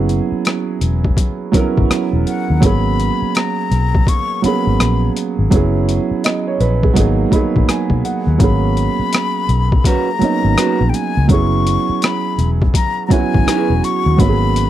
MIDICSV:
0, 0, Header, 1, 7, 480
1, 0, Start_track
1, 0, Key_signature, 5, "minor"
1, 0, Tempo, 722892
1, 1739, Time_signature, 4, 2, 24, 8
1, 9759, End_track
2, 0, Start_track
2, 0, Title_t, "Flute"
2, 0, Program_c, 0, 73
2, 1513, Note_on_c, 0, 78, 72
2, 1756, Note_on_c, 0, 83, 88
2, 1766, Note_off_c, 0, 78, 0
2, 2231, Note_on_c, 0, 82, 87
2, 2241, Note_off_c, 0, 83, 0
2, 2712, Note_on_c, 0, 85, 94
2, 2722, Note_off_c, 0, 82, 0
2, 2945, Note_off_c, 0, 85, 0
2, 2956, Note_on_c, 0, 83, 86
2, 3401, Note_off_c, 0, 83, 0
2, 5595, Note_on_c, 0, 83, 93
2, 6553, Note_on_c, 0, 82, 85
2, 6563, Note_off_c, 0, 83, 0
2, 7234, Note_on_c, 0, 79, 60
2, 7244, Note_off_c, 0, 82, 0
2, 7273, Note_on_c, 0, 80, 79
2, 7283, Note_off_c, 0, 79, 0
2, 7506, Note_off_c, 0, 80, 0
2, 7511, Note_on_c, 0, 85, 96
2, 7993, Note_on_c, 0, 83, 88
2, 8003, Note_off_c, 0, 85, 0
2, 8303, Note_off_c, 0, 83, 0
2, 8472, Note_on_c, 0, 82, 89
2, 8657, Note_off_c, 0, 82, 0
2, 8677, Note_on_c, 0, 82, 61
2, 8711, Note_on_c, 0, 80, 95
2, 8721, Note_off_c, 0, 82, 0
2, 9192, Note_on_c, 0, 85, 90
2, 9202, Note_off_c, 0, 80, 0
2, 9429, Note_on_c, 0, 83, 97
2, 9439, Note_off_c, 0, 85, 0
2, 9759, Note_off_c, 0, 83, 0
2, 9759, End_track
3, 0, Start_track
3, 0, Title_t, "Clean electric guitar"
3, 0, Program_c, 1, 27
3, 6546, Note_on_c, 1, 61, 65
3, 6547, Note_on_c, 1, 66, 72
3, 6553, Note_on_c, 1, 71, 68
3, 6697, Note_off_c, 1, 61, 0
3, 6698, Note_off_c, 1, 66, 0
3, 6701, Note_off_c, 1, 71, 0
3, 7025, Note_on_c, 1, 61, 70
3, 7030, Note_on_c, 1, 66, 75
3, 7032, Note_on_c, 1, 71, 86
3, 7177, Note_off_c, 1, 61, 0
3, 7179, Note_off_c, 1, 66, 0
3, 7180, Note_off_c, 1, 71, 0
3, 8945, Note_on_c, 1, 64, 75
3, 8951, Note_on_c, 1, 68, 76
3, 8953, Note_on_c, 1, 71, 72
3, 9104, Note_off_c, 1, 64, 0
3, 9107, Note_off_c, 1, 68, 0
3, 9108, Note_off_c, 1, 71, 0
3, 9759, End_track
4, 0, Start_track
4, 0, Title_t, "Grand piano"
4, 0, Program_c, 2, 0
4, 0, Control_c, 2, 64, 127
4, 0, Note_on_c, 2, 54, 69
4, 0, Note_on_c, 2, 59, 61
4, 0, Note_on_c, 2, 61, 62
4, 0, Note_on_c, 2, 64, 63
4, 0, Note_on_c, 2, 68, 73
4, 690, Note_off_c, 2, 54, 0
4, 698, Note_off_c, 2, 61, 0
4, 702, Note_off_c, 2, 64, 0
4, 707, Note_off_c, 2, 68, 0
4, 717, Note_off_c, 2, 59, 0
4, 1007, Note_on_c, 2, 54, 74
4, 1014, Note_on_c, 2, 59, 66
4, 1024, Note_on_c, 2, 61, 62
4, 1033, Note_on_c, 2, 64, 64
4, 1040, Note_on_c, 2, 70, 74
4, 1671, Note_off_c, 2, 54, 0
4, 1674, Note_off_c, 2, 59, 0
4, 1679, Note_off_c, 2, 61, 0
4, 1684, Note_off_c, 2, 64, 0
4, 1687, Note_off_c, 2, 70, 0
4, 1727, Note_on_c, 2, 54, 61
4, 1737, Note_on_c, 2, 58, 54
4, 1745, Note_on_c, 2, 59, 57
4, 1748, Control_c, 2, 64, 0
4, 1753, Note_on_c, 2, 61, 55
4, 1761, Note_on_c, 2, 68, 68
4, 1882, Control_c, 2, 64, 127
4, 2610, Note_off_c, 2, 54, 0
4, 2614, Note_off_c, 2, 58, 0
4, 2618, Note_off_c, 2, 59, 0
4, 2623, Note_off_c, 2, 61, 0
4, 2627, Note_off_c, 2, 68, 0
4, 2935, Note_on_c, 2, 54, 61
4, 2942, Note_on_c, 2, 58, 56
4, 2953, Note_on_c, 2, 59, 54
4, 2959, Note_on_c, 2, 61, 56
4, 2968, Note_on_c, 2, 68, 63
4, 3595, Note_off_c, 2, 54, 0
4, 3598, Note_off_c, 2, 58, 0
4, 3603, Note_off_c, 2, 59, 0
4, 3606, Note_off_c, 2, 61, 0
4, 3611, Note_off_c, 2, 68, 0
4, 3654, Note_on_c, 2, 54, 71
4, 3663, Note_on_c, 2, 59, 63
4, 3667, Control_c, 2, 64, 0
4, 3671, Note_on_c, 2, 61, 65
4, 3678, Note_on_c, 2, 64, 65
4, 3688, Note_on_c, 2, 68, 76
4, 3796, Control_c, 2, 64, 127
4, 4146, Note_on_c, 2, 75, 52
4, 4153, Note_off_c, 2, 68, 0
4, 4288, Note_off_c, 2, 75, 0
4, 4299, Note_on_c, 2, 73, 58
4, 4379, Note_off_c, 2, 73, 0
4, 4387, Note_on_c, 2, 71, 62
4, 4528, Note_off_c, 2, 71, 0
4, 4533, Note_off_c, 2, 54, 0
4, 4536, Note_on_c, 2, 68, 48
4, 4538, Note_off_c, 2, 59, 0
4, 4542, Note_off_c, 2, 61, 0
4, 4545, Note_off_c, 2, 64, 0
4, 4605, Note_on_c, 2, 54, 76
4, 4613, Note_on_c, 2, 58, 67
4, 4619, Note_on_c, 2, 59, 65
4, 4627, Note_off_c, 2, 68, 0
4, 4628, Control_c, 2, 64, 0
4, 4629, Note_on_c, 2, 63, 68
4, 4637, Note_on_c, 2, 68, 79
4, 4757, Control_c, 2, 64, 127
4, 4831, Note_off_c, 2, 54, 0
4, 4835, Note_off_c, 2, 58, 0
4, 4838, Note_off_c, 2, 59, 0
4, 4843, Note_off_c, 2, 63, 0
4, 4847, Note_off_c, 2, 68, 0
4, 4850, Note_on_c, 2, 54, 73
4, 4857, Note_on_c, 2, 58, 63
4, 4865, Note_on_c, 2, 83, 57
4, 4866, Note_on_c, 2, 59, 66
4, 4873, Note_on_c, 2, 63, 64
4, 4881, Note_on_c, 2, 68, 72
4, 5085, Note_off_c, 2, 83, 0
4, 5103, Note_on_c, 2, 80, 57
4, 5324, Note_off_c, 2, 80, 0
4, 5344, Note_on_c, 2, 78, 58
4, 5512, Note_off_c, 2, 54, 0
4, 5516, Note_off_c, 2, 58, 0
4, 5520, Note_off_c, 2, 59, 0
4, 5523, Note_off_c, 2, 63, 0
4, 5528, Note_off_c, 2, 68, 0
4, 5564, Note_on_c, 2, 54, 58
4, 5565, Note_off_c, 2, 78, 0
4, 5573, Note_on_c, 2, 58, 53
4, 5583, Note_on_c, 2, 59, 53
4, 5587, Control_c, 2, 64, 0
4, 5590, Note_on_c, 2, 61, 54
4, 5597, Note_on_c, 2, 68, 65
4, 5717, Control_c, 2, 64, 127
4, 6448, Note_off_c, 2, 54, 0
4, 6452, Note_off_c, 2, 58, 0
4, 6458, Note_off_c, 2, 59, 0
4, 6461, Note_off_c, 2, 61, 0
4, 6465, Note_off_c, 2, 68, 0
4, 6766, Note_on_c, 2, 54, 62
4, 6776, Note_on_c, 2, 58, 57
4, 6783, Note_on_c, 2, 59, 55
4, 6792, Note_on_c, 2, 61, 58
4, 6801, Note_on_c, 2, 63, 69
4, 7430, Note_off_c, 2, 54, 0
4, 7435, Note_off_c, 2, 58, 0
4, 7438, Note_off_c, 2, 59, 0
4, 7443, Note_off_c, 2, 61, 0
4, 7447, Note_off_c, 2, 63, 0
4, 7487, Note_on_c, 2, 54, 61
4, 7494, Note_on_c, 2, 59, 58
4, 7505, Note_on_c, 2, 61, 55
4, 7507, Control_c, 2, 64, 0
4, 7513, Note_on_c, 2, 64, 59
4, 7520, Note_on_c, 2, 68, 67
4, 7642, Control_c, 2, 64, 127
4, 8369, Note_off_c, 2, 54, 0
4, 8373, Note_off_c, 2, 59, 0
4, 8378, Note_off_c, 2, 61, 0
4, 8383, Note_off_c, 2, 64, 0
4, 8386, Note_off_c, 2, 68, 0
4, 8688, Note_on_c, 2, 54, 63
4, 8696, Note_on_c, 2, 59, 57
4, 8706, Note_on_c, 2, 61, 57
4, 8714, Note_on_c, 2, 64, 59
4, 8722, Note_on_c, 2, 66, 66
4, 9351, Note_off_c, 2, 54, 0
4, 9355, Note_off_c, 2, 59, 0
4, 9360, Note_off_c, 2, 61, 0
4, 9364, Note_off_c, 2, 64, 0
4, 9368, Note_off_c, 2, 66, 0
4, 9410, Note_on_c, 2, 54, 60
4, 9418, Note_on_c, 2, 58, 56
4, 9427, Control_c, 2, 64, 0
4, 9427, Note_on_c, 2, 59, 55
4, 9435, Note_on_c, 2, 61, 57
4, 9445, Note_on_c, 2, 66, 51
4, 9486, Note_on_c, 2, 68, 67
4, 9487, Note_off_c, 2, 66, 0
4, 9534, Control_c, 2, 64, 127
4, 9759, Note_off_c, 2, 54, 0
4, 9759, Note_off_c, 2, 58, 0
4, 9759, Note_off_c, 2, 59, 0
4, 9759, Note_off_c, 2, 61, 0
4, 9759, Note_off_c, 2, 68, 0
4, 9759, End_track
5, 0, Start_track
5, 0, Title_t, "Fingered electric bass"
5, 0, Program_c, 3, 33
5, 0, Note_on_c, 3, 30, 85
5, 130, Note_off_c, 3, 30, 0
5, 540, Note_on_c, 3, 28, 74
5, 730, Note_off_c, 3, 28, 0
5, 1181, Note_on_c, 3, 32, 73
5, 1246, Note_off_c, 3, 32, 0
5, 1415, Note_on_c, 3, 28, 78
5, 1483, Note_off_c, 3, 28, 0
5, 1661, Note_on_c, 3, 39, 73
5, 1727, Note_off_c, 3, 39, 0
5, 1743, Note_on_c, 3, 32, 82
5, 2052, Note_off_c, 3, 32, 0
5, 2466, Note_on_c, 3, 35, 76
5, 2653, Note_off_c, 3, 35, 0
5, 3101, Note_on_c, 3, 32, 74
5, 3166, Note_off_c, 3, 32, 0
5, 3188, Note_on_c, 3, 34, 74
5, 3375, Note_off_c, 3, 34, 0
5, 3577, Note_on_c, 3, 32, 71
5, 3644, Note_off_c, 3, 32, 0
5, 3663, Note_on_c, 3, 30, 86
5, 3973, Note_off_c, 3, 30, 0
5, 4385, Note_on_c, 3, 34, 72
5, 4573, Note_off_c, 3, 34, 0
5, 4620, Note_on_c, 3, 32, 93
5, 4810, Note_off_c, 3, 32, 0
5, 5022, Note_on_c, 3, 34, 77
5, 5087, Note_off_c, 3, 34, 0
5, 5247, Note_on_c, 3, 35, 70
5, 5318, Note_off_c, 3, 35, 0
5, 5491, Note_on_c, 3, 39, 69
5, 5560, Note_off_c, 3, 39, 0
5, 5579, Note_on_c, 3, 32, 90
5, 5891, Note_off_c, 3, 32, 0
5, 6300, Note_on_c, 3, 35, 77
5, 6490, Note_off_c, 3, 35, 0
5, 6936, Note_on_c, 3, 32, 81
5, 7003, Note_off_c, 3, 32, 0
5, 7176, Note_on_c, 3, 34, 75
5, 7243, Note_off_c, 3, 34, 0
5, 7418, Note_on_c, 3, 37, 73
5, 7485, Note_off_c, 3, 37, 0
5, 7500, Note_on_c, 3, 30, 87
5, 7811, Note_off_c, 3, 30, 0
5, 8223, Note_on_c, 3, 28, 79
5, 8412, Note_off_c, 3, 28, 0
5, 8864, Note_on_c, 3, 32, 79
5, 8928, Note_off_c, 3, 32, 0
5, 9097, Note_on_c, 3, 28, 82
5, 9164, Note_off_c, 3, 28, 0
5, 9337, Note_on_c, 3, 39, 77
5, 9404, Note_off_c, 3, 39, 0
5, 9422, Note_on_c, 3, 32, 96
5, 9732, Note_off_c, 3, 32, 0
5, 9759, End_track
6, 0, Start_track
6, 0, Title_t, "Muted fingered electric bass strokes"
6, 212, Note_on_c, 9, 29, 39
6, 278, Note_off_c, 9, 29, 0
6, 1021, Note_on_c, 9, 29, 42
6, 1088, Note_off_c, 9, 29, 0
6, 2139, Note_on_c, 9, 29, 40
6, 2206, Note_off_c, 9, 29, 0
6, 2948, Note_on_c, 9, 29, 40
6, 3015, Note_off_c, 9, 29, 0
6, 4058, Note_on_c, 9, 29, 42
6, 4124, Note_off_c, 9, 29, 0
6, 4863, Note_on_c, 9, 29, 37
6, 4929, Note_off_c, 9, 29, 0
6, 5972, Note_on_c, 9, 29, 43
6, 6039, Note_off_c, 9, 29, 0
6, 6783, Note_on_c, 9, 29, 40
6, 6849, Note_off_c, 9, 29, 0
6, 7899, Note_on_c, 9, 29, 44
6, 7965, Note_off_c, 9, 29, 0
6, 8705, Note_on_c, 9, 29, 41
6, 8772, Note_off_c, 9, 29, 0
6, 9759, End_track
7, 0, Start_track
7, 0, Title_t, "Drums"
7, 61, Note_on_c, 9, 42, 55
7, 128, Note_off_c, 9, 42, 0
7, 299, Note_on_c, 9, 42, 57
7, 311, Note_on_c, 9, 37, 92
7, 365, Note_off_c, 9, 42, 0
7, 378, Note_off_c, 9, 37, 0
7, 540, Note_on_c, 9, 42, 51
7, 607, Note_off_c, 9, 42, 0
7, 694, Note_on_c, 9, 36, 74
7, 761, Note_off_c, 9, 36, 0
7, 776, Note_on_c, 9, 36, 74
7, 781, Note_on_c, 9, 42, 74
7, 842, Note_off_c, 9, 36, 0
7, 848, Note_off_c, 9, 42, 0
7, 1019, Note_on_c, 9, 36, 77
7, 1024, Note_on_c, 9, 42, 57
7, 1085, Note_off_c, 9, 36, 0
7, 1090, Note_off_c, 9, 42, 0
7, 1179, Note_on_c, 9, 36, 70
7, 1245, Note_off_c, 9, 36, 0
7, 1266, Note_on_c, 9, 37, 91
7, 1271, Note_on_c, 9, 42, 73
7, 1333, Note_off_c, 9, 37, 0
7, 1337, Note_off_c, 9, 42, 0
7, 1507, Note_on_c, 9, 42, 55
7, 1573, Note_off_c, 9, 42, 0
7, 1739, Note_on_c, 9, 36, 96
7, 1744, Note_on_c, 9, 42, 66
7, 1805, Note_off_c, 9, 36, 0
7, 1810, Note_off_c, 9, 42, 0
7, 1989, Note_on_c, 9, 42, 57
7, 2056, Note_off_c, 9, 42, 0
7, 2223, Note_on_c, 9, 42, 60
7, 2236, Note_on_c, 9, 37, 94
7, 2290, Note_off_c, 9, 42, 0
7, 2302, Note_off_c, 9, 37, 0
7, 2467, Note_on_c, 9, 42, 47
7, 2534, Note_off_c, 9, 42, 0
7, 2620, Note_on_c, 9, 36, 80
7, 2687, Note_off_c, 9, 36, 0
7, 2701, Note_on_c, 9, 36, 79
7, 2710, Note_on_c, 9, 42, 74
7, 2767, Note_off_c, 9, 36, 0
7, 2776, Note_off_c, 9, 42, 0
7, 2947, Note_on_c, 9, 42, 58
7, 3014, Note_off_c, 9, 42, 0
7, 3188, Note_on_c, 9, 37, 88
7, 3193, Note_on_c, 9, 42, 67
7, 3255, Note_off_c, 9, 37, 0
7, 3259, Note_off_c, 9, 42, 0
7, 3429, Note_on_c, 9, 42, 55
7, 3496, Note_off_c, 9, 42, 0
7, 3660, Note_on_c, 9, 36, 97
7, 3665, Note_on_c, 9, 42, 69
7, 3726, Note_off_c, 9, 36, 0
7, 3731, Note_off_c, 9, 42, 0
7, 3909, Note_on_c, 9, 42, 56
7, 3975, Note_off_c, 9, 42, 0
7, 4144, Note_on_c, 9, 42, 60
7, 4157, Note_on_c, 9, 37, 93
7, 4210, Note_off_c, 9, 42, 0
7, 4223, Note_off_c, 9, 37, 0
7, 4386, Note_on_c, 9, 42, 52
7, 4452, Note_off_c, 9, 42, 0
7, 4538, Note_on_c, 9, 36, 79
7, 4604, Note_off_c, 9, 36, 0
7, 4618, Note_on_c, 9, 36, 75
7, 4624, Note_on_c, 9, 42, 73
7, 4685, Note_off_c, 9, 36, 0
7, 4691, Note_off_c, 9, 42, 0
7, 4860, Note_on_c, 9, 36, 72
7, 4864, Note_on_c, 9, 42, 58
7, 4926, Note_off_c, 9, 36, 0
7, 4931, Note_off_c, 9, 42, 0
7, 5019, Note_on_c, 9, 36, 68
7, 5085, Note_off_c, 9, 36, 0
7, 5104, Note_on_c, 9, 37, 87
7, 5108, Note_on_c, 9, 42, 72
7, 5170, Note_off_c, 9, 37, 0
7, 5175, Note_off_c, 9, 42, 0
7, 5244, Note_on_c, 9, 36, 62
7, 5311, Note_off_c, 9, 36, 0
7, 5345, Note_on_c, 9, 42, 52
7, 5411, Note_off_c, 9, 42, 0
7, 5575, Note_on_c, 9, 36, 98
7, 5577, Note_on_c, 9, 42, 66
7, 5642, Note_off_c, 9, 36, 0
7, 5644, Note_off_c, 9, 42, 0
7, 5823, Note_on_c, 9, 42, 58
7, 5889, Note_off_c, 9, 42, 0
7, 6059, Note_on_c, 9, 42, 64
7, 6072, Note_on_c, 9, 37, 91
7, 6126, Note_off_c, 9, 42, 0
7, 6139, Note_off_c, 9, 37, 0
7, 6302, Note_on_c, 9, 42, 52
7, 6368, Note_off_c, 9, 42, 0
7, 6455, Note_on_c, 9, 36, 77
7, 6522, Note_off_c, 9, 36, 0
7, 6536, Note_on_c, 9, 36, 82
7, 6543, Note_on_c, 9, 42, 75
7, 6602, Note_off_c, 9, 36, 0
7, 6609, Note_off_c, 9, 42, 0
7, 6783, Note_on_c, 9, 42, 60
7, 6849, Note_off_c, 9, 42, 0
7, 7022, Note_on_c, 9, 37, 96
7, 7027, Note_on_c, 9, 42, 74
7, 7089, Note_off_c, 9, 37, 0
7, 7093, Note_off_c, 9, 42, 0
7, 7264, Note_on_c, 9, 42, 60
7, 7330, Note_off_c, 9, 42, 0
7, 7496, Note_on_c, 9, 36, 97
7, 7499, Note_on_c, 9, 42, 69
7, 7562, Note_off_c, 9, 36, 0
7, 7565, Note_off_c, 9, 42, 0
7, 7746, Note_on_c, 9, 42, 59
7, 7813, Note_off_c, 9, 42, 0
7, 7981, Note_on_c, 9, 42, 65
7, 7994, Note_on_c, 9, 37, 98
7, 8048, Note_off_c, 9, 42, 0
7, 8060, Note_off_c, 9, 37, 0
7, 8225, Note_on_c, 9, 42, 52
7, 8291, Note_off_c, 9, 42, 0
7, 8378, Note_on_c, 9, 36, 81
7, 8444, Note_off_c, 9, 36, 0
7, 8459, Note_on_c, 9, 36, 78
7, 8465, Note_on_c, 9, 42, 77
7, 8525, Note_off_c, 9, 36, 0
7, 8532, Note_off_c, 9, 42, 0
7, 8701, Note_on_c, 9, 36, 78
7, 8706, Note_on_c, 9, 42, 62
7, 8768, Note_off_c, 9, 36, 0
7, 8772, Note_off_c, 9, 42, 0
7, 8861, Note_on_c, 9, 36, 71
7, 8927, Note_off_c, 9, 36, 0
7, 8949, Note_on_c, 9, 37, 93
7, 8954, Note_on_c, 9, 42, 72
7, 9016, Note_off_c, 9, 37, 0
7, 9020, Note_off_c, 9, 42, 0
7, 9190, Note_on_c, 9, 42, 59
7, 9257, Note_off_c, 9, 42, 0
7, 9419, Note_on_c, 9, 36, 97
7, 9426, Note_on_c, 9, 42, 68
7, 9486, Note_off_c, 9, 36, 0
7, 9492, Note_off_c, 9, 42, 0
7, 9669, Note_on_c, 9, 42, 60
7, 9735, Note_off_c, 9, 42, 0
7, 9759, End_track
0, 0, End_of_file